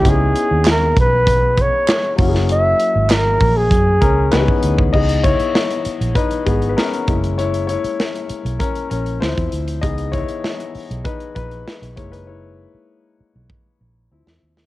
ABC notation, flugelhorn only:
X:1
M:4/4
L:1/16
Q:1/4=98
K:C#dor
V:1 name="Flugelhorn"
G4 A2 B4 c4 z2 | e4 A3 G6 z3 | z16 | z16 |
z16 | z16 |]